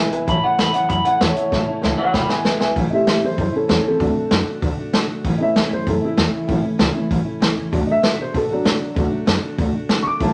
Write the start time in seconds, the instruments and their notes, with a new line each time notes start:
Already playing: upright bass G#1, steel-string acoustic guitar E2 B2 E3
0.00 steel-string acoustic guitar G#3 B3 E4
0.11 upright bass B1, steel-string acoustic guitar E3 G#3 B3 E4, upright piano B4 E5 G#5, closed hi-hat
0.26 upright bass A1, steel-string acoustic guitar A2 E3 A3 C#4 E4, upright piano C#5 E5 A5, clean electric guitar B5, kick, closed hi-hat
0.42 steel-string acoustic guitar A3 C#4 E4, upright piano C#5 E5 A5, clean electric guitar F#5, muted upright bass stroke
0.58 upright bass E2, steel-string acoustic guitar A2 E3 A3 C#4 E4, upright piano E5 A5, clean electric guitar B5, snare, closed hi-hat
0.73 upright bass F#2, steel-string acoustic guitar A3 C#4 E4, upright piano C#5 E5 A5, clean electric guitar F#5, closed hi-hat
0.89 upright bass F#2, steel-string acoustic guitar E3 A3 C#4 E4, upright piano C#5 E5 G#5, clean electric guitar B5, kick, closed hi-hat
1.04 steel-string acoustic guitar C#4 E4, upright piano C#5 E5 A5, clean electric guitar F#5, muted upright bass stroke, closed hi-hat
1.09 steel-string acoustic guitar A3
1.21 upright bass E2, steel-string acoustic guitar A2 E3 A3 C#4 E4, upright piano C#5 E5 A5, clean electric guitar C#5, snare, closed hi-hat
1.35 steel-string acoustic guitar C#4 E4, upright piano C#5 E5 A5, closed hi-hat
1.40 steel-string acoustic guitar A3
1.51 upright bass A1, steel-string acoustic guitar A2 E3 A3 C#4 E4, upright piano C#5 E5 A5, kick, snare
1.66 steel-string acoustic guitar C#4 E4, upright piano C#5 E5 A5, muted upright bass stroke
1.71 steel-string acoustic guitar A3
1.82 upright bass C#2, steel-string acoustic guitar A2 E3 A3 C#4 E4, upright piano C#5 E5 A5, snare
1.97 steel-string acoustic guitar A3 C#4 E4, clean electric guitar C#5 F#5, upright piano E5 F#5, muted upright bass stroke
2.13 upright bass E1, steel-string acoustic guitar E3 G#3 B3 E4, upright piano B4 E5 G#5, clean electric guitar G5 B5, kick, snare
2.29 steel-string acoustic guitar E3 G#3 B3 E4, upright piano B4 E5 G#5, clean electric guitar G#5, muted upright bass stroke, snare
2.45 upright bass G#1, steel-string acoustic guitar E2 B2 E3 G#3 B3 E4, upright piano B4 E5 G#5, snare
2.60 upright bass B1, steel-string acoustic guitar G#3 B3 E4, upright piano B4 E5 G#5, snare
2.64 steel-string acoustic guitar E3
2.75 upright bass A1, steel-string acoustic guitar A2 E3 A3 C#4 E4, kick, open hi-hat
2.90 upright piano E3 A3 C#4 G4 D#5, steel-string acoustic guitar C#4 E4, muted upright bass stroke
2.94 steel-string acoustic guitar A3, upright piano E5
3.07 upright bass E2, steel-string acoustic guitar A2 E3 A3 C#4 E4, upright piano G4 E5, snare, open hi-hat
3.22 upright bass F#2, steel-string acoustic guitar A3 C#4 E4, upright piano E4 C5
3.37 upright bass F#2, steel-string acoustic guitar E3 A3 C#4 E4, upright piano E4 C5, kick, open hi-hat
3.52 steel-string acoustic guitar A3 C#4 E4, upright piano C#4 A4, muted upright bass stroke
3.68 upright bass E2, steel-string acoustic guitar A2 E3 A3 C#4 E4, upright piano C#4 A4, snare, open hi-hat
3.83 steel-string acoustic guitar A3 C#4 E4
3.87 upright piano C4 A4
3.99 upright bass D2, steel-string acoustic guitar D3 A3 D4 F#4, upright piano F#3 A3 D4, kick, open hi-hat
4.14 steel-string acoustic guitar A3 D4 F#4, muted upright bass stroke
4.31 upright bass F#2, steel-string acoustic guitar D3 A3 D4 F#4, snare, open hi-hat
4.46 steel-string acoustic guitar A3 D4 F#4
4.61 upright bass D2, steel-string acoustic guitar D3 A3 D4 F#4, kick, open hi-hat
4.77 steel-string acoustic guitar A3 D4 F#4, muted upright bass stroke
4.93 upright bass F#2, steel-string acoustic guitar D3 A3 D4 F#4, snare, open hi-hat
5.09 upright bass A2, steel-string acoustic guitar A3 D4 F#4
5.25 upright bass A1, steel-string acoustic guitar A2 E3 A3 C#4 E4, kick, open hi-hat
5.38 upright piano E3 A3 C#4 D#5, steel-string acoustic guitar C#4 E4, muted upright bass stroke
5.42 steel-string acoustic guitar A3, upright piano E5
5.56 upright bass E2, steel-string acoustic guitar A2 E3 A3 C#4 E4, snare, open hi-hat
5.71 upright bass F#2, steel-string acoustic guitar A3 C#4 E4, upright piano C5
5.86 upright bass F#2, steel-string acoustic guitar E3 A3 C#4 E4, upright piano E3 A3 C#4 A4, kick, open hi-hat
6.02 steel-string acoustic guitar A3 C#4 E4, upright piano E4, muted upright bass stroke
6.17 upright bass E2, steel-string acoustic guitar A2 E3 A3 C#4 E4, snare, open hi-hat
6.32 steel-string acoustic guitar A3 C#4 E4
6.47 upright bass A1, steel-string acoustic guitar A2 E3 A3 C#4 E4, upright piano E3 A3 C#4, kick, open hi-hat
6.64 steel-string acoustic guitar A3 C#4 E4, muted upright bass stroke
6.78 upright bass C#2, steel-string acoustic guitar A2 E3 A3 C#4 E4, snare, open hi-hat
6.94 upright piano E3 A3 C#4, steel-string acoustic guitar A3 C#4 E4, muted upright bass stroke
7.10 upright bass A1, steel-string acoustic guitar E3 A3 C#4 E4, kick, open hi-hat
7.24 steel-string acoustic guitar A3 C#4 E4, muted upright bass stroke
7.40 upright bass C#2, steel-string acoustic guitar A2 E3 A3 C#4 E4, snare, open hi-hat
7.56 upright bass E2, steel-string acoustic guitar A3 C#4 E4
7.72 upright bass D2, steel-string acoustic guitar D3 A3 D4 F#4, upright piano F#3 A3 D4, kick, open hi-hat
7.86 steel-string acoustic guitar A3 D4 F#4, upright piano D#5, muted upright bass stroke
7.91 upright piano E5
8.02 upright bass A2, steel-string acoustic guitar D3 A3 D4 F#4, snare, open hi-hat
8.16 upright bass B2, steel-string acoustic guitar A3 D4 F#4
8.22 upright piano C5
8.33 upright bass B2, steel-string acoustic guitar D3 A3 D4 F#4, kick, open hi-hat
8.37 upright piano A4
8.49 upright piano F#3 D4, steel-string acoustic guitar A3 D4 F#4, muted upright bass stroke
8.64 upright bass A2, steel-string acoustic guitar D3 A3 D4 F#4, snare, open hi-hat
8.79 steel-string acoustic guitar A3 D4 F#4, muted upright bass stroke
8.95 upright bass D2, steel-string acoustic guitar D3 A3 D4 F#4, upright piano F#3 A3 D4, kick, open hi-hat
9.10 steel-string acoustic guitar A3 D4 F#4, muted upright bass stroke
9.26 upright bass F#2, steel-string acoustic guitar D3 A3 D4 F#4, snare, open hi-hat
9.41 steel-string acoustic guitar A3 D4 F#4
9.57 upright bass D2, steel-string acoustic guitar D3 A3 D4 F#4, upright piano F#3 A3 D4, kick, open hi-hat
9.74 steel-string acoustic guitar A3 D4 F#4, muted upright bass stroke
9.89 upright bass F#2, steel-string acoustic guitar D3 A3 D4 F#4, snare, open hi-hat
10.03 upright bass A2, steel-string acoustic guitar F#4, upright piano C#6
10.07 steel-string acoustic guitar A3 D4, upright piano D6
10.20 upright bass A1, steel-string acoustic guitar A2 E3 A3 C#4 E4, upright piano E3 A3 C#4 A5, kick, open hi-hat